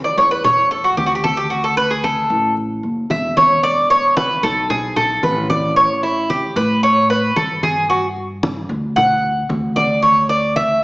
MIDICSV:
0, 0, Header, 1, 4, 480
1, 0, Start_track
1, 0, Tempo, 532387
1, 1358, Time_signature, 4, 2, 24, 8
1, 9770, End_track
2, 0, Start_track
2, 0, Title_t, "Cuban tres"
2, 0, Program_c, 0, 25
2, 38, Note_on_c, 0, 74, 78
2, 155, Note_off_c, 0, 74, 0
2, 159, Note_on_c, 0, 73, 80
2, 275, Note_off_c, 0, 73, 0
2, 280, Note_on_c, 0, 71, 77
2, 396, Note_off_c, 0, 71, 0
2, 400, Note_on_c, 0, 73, 96
2, 632, Note_off_c, 0, 73, 0
2, 640, Note_on_c, 0, 69, 80
2, 755, Note_off_c, 0, 69, 0
2, 758, Note_on_c, 0, 66, 69
2, 873, Note_off_c, 0, 66, 0
2, 876, Note_on_c, 0, 67, 83
2, 955, Note_off_c, 0, 67, 0
2, 958, Note_on_c, 0, 66, 73
2, 1034, Note_off_c, 0, 66, 0
2, 1038, Note_on_c, 0, 67, 73
2, 1115, Note_off_c, 0, 67, 0
2, 1116, Note_on_c, 0, 69, 95
2, 1233, Note_off_c, 0, 69, 0
2, 1236, Note_on_c, 0, 67, 75
2, 1350, Note_off_c, 0, 67, 0
2, 1354, Note_on_c, 0, 66, 73
2, 1472, Note_off_c, 0, 66, 0
2, 1477, Note_on_c, 0, 69, 84
2, 1593, Note_off_c, 0, 69, 0
2, 1597, Note_on_c, 0, 71, 99
2, 1713, Note_off_c, 0, 71, 0
2, 1718, Note_on_c, 0, 68, 73
2, 1834, Note_off_c, 0, 68, 0
2, 1837, Note_on_c, 0, 69, 80
2, 2284, Note_off_c, 0, 69, 0
2, 2800, Note_on_c, 0, 76, 76
2, 3031, Note_off_c, 0, 76, 0
2, 3037, Note_on_c, 0, 73, 92
2, 3270, Note_off_c, 0, 73, 0
2, 3276, Note_on_c, 0, 74, 101
2, 3509, Note_off_c, 0, 74, 0
2, 3518, Note_on_c, 0, 73, 89
2, 3751, Note_off_c, 0, 73, 0
2, 3755, Note_on_c, 0, 71, 84
2, 3989, Note_off_c, 0, 71, 0
2, 3996, Note_on_c, 0, 69, 91
2, 4230, Note_off_c, 0, 69, 0
2, 4237, Note_on_c, 0, 68, 86
2, 4470, Note_off_c, 0, 68, 0
2, 4475, Note_on_c, 0, 69, 86
2, 4709, Note_off_c, 0, 69, 0
2, 4718, Note_on_c, 0, 71, 65
2, 4951, Note_off_c, 0, 71, 0
2, 4956, Note_on_c, 0, 74, 95
2, 5190, Note_off_c, 0, 74, 0
2, 5195, Note_on_c, 0, 73, 84
2, 5430, Note_off_c, 0, 73, 0
2, 5437, Note_on_c, 0, 64, 68
2, 5671, Note_off_c, 0, 64, 0
2, 5678, Note_on_c, 0, 67, 80
2, 5911, Note_off_c, 0, 67, 0
2, 5918, Note_on_c, 0, 71, 92
2, 6151, Note_off_c, 0, 71, 0
2, 6159, Note_on_c, 0, 73, 102
2, 6392, Note_off_c, 0, 73, 0
2, 6401, Note_on_c, 0, 71, 90
2, 6633, Note_off_c, 0, 71, 0
2, 6638, Note_on_c, 0, 69, 77
2, 6872, Note_off_c, 0, 69, 0
2, 6881, Note_on_c, 0, 68, 85
2, 7113, Note_off_c, 0, 68, 0
2, 7119, Note_on_c, 0, 66, 77
2, 7264, Note_off_c, 0, 66, 0
2, 8079, Note_on_c, 0, 78, 88
2, 8764, Note_off_c, 0, 78, 0
2, 8799, Note_on_c, 0, 74, 87
2, 9033, Note_off_c, 0, 74, 0
2, 9038, Note_on_c, 0, 73, 78
2, 9272, Note_off_c, 0, 73, 0
2, 9280, Note_on_c, 0, 74, 92
2, 9513, Note_off_c, 0, 74, 0
2, 9521, Note_on_c, 0, 76, 94
2, 9754, Note_off_c, 0, 76, 0
2, 9770, End_track
3, 0, Start_track
3, 0, Title_t, "Upright bass"
3, 0, Program_c, 1, 32
3, 156, Note_on_c, 1, 40, 93
3, 841, Note_off_c, 1, 40, 0
3, 876, Note_on_c, 1, 38, 95
3, 2016, Note_off_c, 1, 38, 0
3, 2073, Note_on_c, 1, 33, 93
3, 2521, Note_off_c, 1, 33, 0
3, 2553, Note_on_c, 1, 30, 71
3, 2778, Note_off_c, 1, 30, 0
3, 2794, Note_on_c, 1, 28, 90
3, 3936, Note_off_c, 1, 28, 0
3, 3994, Note_on_c, 1, 35, 100
3, 4680, Note_off_c, 1, 35, 0
3, 4713, Note_on_c, 1, 33, 95
3, 5856, Note_off_c, 1, 33, 0
3, 5913, Note_on_c, 1, 45, 98
3, 6600, Note_off_c, 1, 45, 0
3, 6637, Note_on_c, 1, 43, 89
3, 7779, Note_off_c, 1, 43, 0
3, 7836, Note_on_c, 1, 38, 95
3, 8523, Note_off_c, 1, 38, 0
3, 8559, Note_on_c, 1, 38, 91
3, 9700, Note_off_c, 1, 38, 0
3, 9770, End_track
4, 0, Start_track
4, 0, Title_t, "Drums"
4, 162, Note_on_c, 9, 63, 32
4, 252, Note_off_c, 9, 63, 0
4, 400, Note_on_c, 9, 63, 32
4, 400, Note_on_c, 9, 64, 80
4, 490, Note_off_c, 9, 63, 0
4, 490, Note_off_c, 9, 64, 0
4, 640, Note_on_c, 9, 63, 33
4, 730, Note_off_c, 9, 63, 0
4, 881, Note_on_c, 9, 63, 84
4, 971, Note_off_c, 9, 63, 0
4, 1120, Note_on_c, 9, 63, 76
4, 1210, Note_off_c, 9, 63, 0
4, 1360, Note_on_c, 9, 63, 35
4, 1450, Note_off_c, 9, 63, 0
4, 1600, Note_on_c, 9, 63, 36
4, 1690, Note_off_c, 9, 63, 0
4, 1839, Note_on_c, 9, 63, 60
4, 1929, Note_off_c, 9, 63, 0
4, 2079, Note_on_c, 9, 63, 32
4, 2170, Note_off_c, 9, 63, 0
4, 2317, Note_on_c, 9, 63, 33
4, 2407, Note_off_c, 9, 63, 0
4, 2555, Note_on_c, 9, 63, 33
4, 2645, Note_off_c, 9, 63, 0
4, 2796, Note_on_c, 9, 63, 86
4, 2886, Note_off_c, 9, 63, 0
4, 3036, Note_on_c, 9, 63, 79
4, 3126, Note_off_c, 9, 63, 0
4, 3276, Note_on_c, 9, 63, 35
4, 3366, Note_off_c, 9, 63, 0
4, 3516, Note_on_c, 9, 63, 34
4, 3606, Note_off_c, 9, 63, 0
4, 3758, Note_on_c, 9, 63, 100
4, 3848, Note_off_c, 9, 63, 0
4, 3999, Note_on_c, 9, 63, 31
4, 4089, Note_off_c, 9, 63, 0
4, 4240, Note_on_c, 9, 63, 34
4, 4240, Note_on_c, 9, 64, 84
4, 4330, Note_off_c, 9, 63, 0
4, 4330, Note_off_c, 9, 64, 0
4, 4479, Note_on_c, 9, 63, 33
4, 4479, Note_on_c, 9, 64, 67
4, 4569, Note_off_c, 9, 63, 0
4, 4569, Note_off_c, 9, 64, 0
4, 4715, Note_on_c, 9, 63, 87
4, 4805, Note_off_c, 9, 63, 0
4, 4959, Note_on_c, 9, 63, 83
4, 5049, Note_off_c, 9, 63, 0
4, 5199, Note_on_c, 9, 63, 33
4, 5290, Note_off_c, 9, 63, 0
4, 5441, Note_on_c, 9, 63, 33
4, 5531, Note_off_c, 9, 63, 0
4, 5679, Note_on_c, 9, 63, 64
4, 5769, Note_off_c, 9, 63, 0
4, 5918, Note_on_c, 9, 63, 31
4, 6008, Note_off_c, 9, 63, 0
4, 6159, Note_on_c, 9, 63, 33
4, 6249, Note_off_c, 9, 63, 0
4, 6400, Note_on_c, 9, 63, 35
4, 6490, Note_off_c, 9, 63, 0
4, 6639, Note_on_c, 9, 63, 84
4, 6730, Note_off_c, 9, 63, 0
4, 6878, Note_on_c, 9, 63, 84
4, 6968, Note_off_c, 9, 63, 0
4, 7121, Note_on_c, 9, 63, 33
4, 7212, Note_off_c, 9, 63, 0
4, 7361, Note_on_c, 9, 63, 35
4, 7452, Note_off_c, 9, 63, 0
4, 7602, Note_on_c, 9, 63, 100
4, 7692, Note_off_c, 9, 63, 0
4, 7843, Note_on_c, 9, 63, 33
4, 7933, Note_off_c, 9, 63, 0
4, 8085, Note_on_c, 9, 63, 33
4, 8085, Note_on_c, 9, 64, 82
4, 8175, Note_off_c, 9, 63, 0
4, 8175, Note_off_c, 9, 64, 0
4, 8325, Note_on_c, 9, 63, 33
4, 8415, Note_off_c, 9, 63, 0
4, 8564, Note_on_c, 9, 63, 85
4, 8654, Note_off_c, 9, 63, 0
4, 8806, Note_on_c, 9, 63, 83
4, 8896, Note_off_c, 9, 63, 0
4, 9045, Note_on_c, 9, 63, 35
4, 9135, Note_off_c, 9, 63, 0
4, 9283, Note_on_c, 9, 63, 34
4, 9373, Note_off_c, 9, 63, 0
4, 9523, Note_on_c, 9, 63, 62
4, 9613, Note_off_c, 9, 63, 0
4, 9770, End_track
0, 0, End_of_file